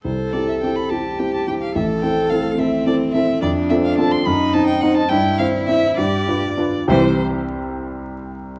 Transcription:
X:1
M:6/8
L:1/16
Q:3/8=71
K:C
V:1 name="Violin"
c2 d e g b a2 g a g f | e2 g2 f2 e2 d2 e2 | d2 e f a c' b2 a g ^f a | g2 f2 e2 d6 |
c2 z8 z2 |]
V:2 name="Cello"
A6 G6 | A6 C6 | D6 ^D6 | E6 G3 z3 |
E,2 z8 z2 |]
V:3 name="Grand piano"
C,,2 [CEG]2 [CEG]2 [CEG]2 [CEG]2 [CEG]2 | A,,,2 [CEA]2 [CEA]2 [CEA]2 [CEA]2 [CEA]2 | F,,2 [CFA]2 [CFA]2 ^F,,2 [C^Dc]2 [CDc]2 | G,,2 [CEc]2 [CEc]2 G,,2 [DFB]2 [DFB]2 |
[C,,C,EGcg]2 z8 z2 |]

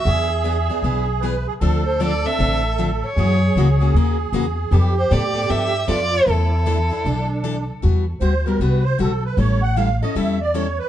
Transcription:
X:1
M:4/4
L:1/16
Q:"Swing" 1/4=154
K:Ephr
V:1 name="Violin"
e6 z8 z2 | z2 c2 d2 e6 z2 ^c2- | ^c6 z8 z2 | z2 c2 d4 e4 d4 |
A12- A2 z2 | [K:Em] z16 | z16 |]
V:2 name="Accordion"
^G12 B2 G2 | A16 | ^G16 | G12 F4 |
E8 D6 z2 | [K:Em] z4 c2 ^A2 B2 c2 =A2 B2 | ^c2 f2 =f2 ^d2 e2 =d2 c2 B2 |]
V:3 name="Steel-string acoustic guitar"
[E,B,D^G]2 z2 [E,B,DG] z [B,DG]2 [E,B,DG]2 z2 [E,B,DG] z3 | [D,F,CDA]2 z2 [D,F,CDA] z [CDA]2 [D,F,CDA]2 z2 [D,F,CDA] z3 | [^C,E,^A,^C^F]2 z2 [C,E,A,CF] z [A,CF]2 [C,E,A,CF]2 z2 [C,E,A,CF] z3 | [F,B,DA]2 z2 [F,B,DA] z [B,DA]2 [F,B,DA]2 z2 [F,B,DA] z3 |
[E,A,DEA]2 z2 [E,A,DEA] z [DEA]2 [E,A,DEA]2 z2 [E,A,DEA] z3 | [K:Em] [E,G,B,F]2 z2 [E,G,B,F] z [G,B,F]2 [E,G,B,F]2 z2 [E,G,B,F] z3 | [E,G,^CEA]2 z2 [E,G,CEA] z [CEA]2 [E,G,CEA]2 z2 [E,G,CEA] z3 |]
V:4 name="Upright bass" clef=bass
E,,8 B,,,8 | D,,8 A,,,8 | ^F,,4 ^C,,4 ^D,,4 E,,4 | F,,4 A,,4 G,,4 F,,4 |
E,,8 B,,,8 | [K:Em] E,,4 D,,4 C,,4 B,,,4 | A,,,8 E,,8 |]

